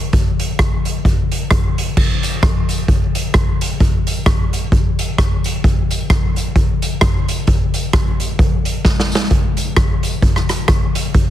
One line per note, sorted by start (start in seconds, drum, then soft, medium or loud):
0.13 kick loud
0.13 closed hi-hat medium
0.39 closed hi-hat medium
0.59 kick loud
0.59 cross-stick loud
0.59 closed hi-hat medium
0.85 closed hi-hat medium
1.05 kick medium
1.05 closed hi-hat medium
1.32 closed hi-hat medium
1.51 kick loud
1.51 cross-stick loud
1.51 closed hi-hat medium
1.78 closed hi-hat medium
1.97 kick loud
1.97 crash medium
2.23 closed hi-hat medium
2.23 tambourine medium
2.43 kick loud
2.43 cross-stick loud
2.43 closed hi-hat medium
2.69 closed hi-hat medium
2.69 tambourine medium
2.88 kick loud
2.88 closed hi-hat medium
3.15 closed hi-hat medium
3.15 tambourine medium
3.34 kick loud
3.34 cross-stick medium
3.34 closed hi-hat medium
3.61 closed hi-hat medium
3.61 tambourine medium
3.80 kick loud
3.80 closed hi-hat medium
4.07 closed hi-hat medium
4.07 tambourine medium
4.26 kick loud
4.26 cross-stick loud
4.26 closed hi-hat medium
4.53 closed hi-hat medium
4.53 tambourine medium
4.72 kick loud
4.72 closed hi-hat medium
4.99 closed hi-hat medium
4.99 tambourine medium
5.18 kick loud
5.18 cross-stick loud
5.18 closed hi-hat medium
5.44 closed hi-hat medium
5.44 tambourine medium
5.64 kick loud
5.64 closed hi-hat medium
5.91 closed hi-hat medium
5.91 tambourine medium
6.10 kick loud
6.10 cross-stick loud
6.10 closed hi-hat medium
6.36 closed hi-hat medium
6.36 tambourine medium
6.56 kick loud
6.56 closed hi-hat medium
6.82 closed hi-hat medium
6.82 tambourine medium
7.01 kick medium
7.01 cross-stick loud
7.01 closed hi-hat medium
7.28 closed hi-hat medium
7.28 tambourine medium
7.47 kick medium
7.47 closed hi-hat medium
7.74 closed hi-hat medium
7.74 tambourine medium
7.93 kick loud
7.93 cross-stick loud
7.93 closed hi-hat medium
8.20 closed hi-hat medium
8.20 tambourine medium
8.39 kick loud
8.39 closed hi-hat medium
8.65 closed hi-hat medium
8.65 tambourine medium
8.85 kick loud
8.85 snare soft
9.00 snare medium
9.12 snare medium
9.12 tambourine medium
9.30 kick loud
9.30 closed hi-hat medium
9.57 closed hi-hat medium
9.57 tambourine medium
9.77 kick loud
9.77 cross-stick medium
9.77 closed hi-hat medium
10.03 closed hi-hat medium
10.03 tambourine medium
10.22 kick loud
10.22 closed hi-hat medium
10.36 cross-stick medium
10.49 cross-stick medium
10.49 closed hi-hat medium
10.49 tambourine medium
10.68 kick loud
10.68 cross-stick loud
10.68 closed hi-hat medium
10.95 closed hi-hat loud
10.95 tambourine medium
11.14 kick loud
11.14 closed hi-hat medium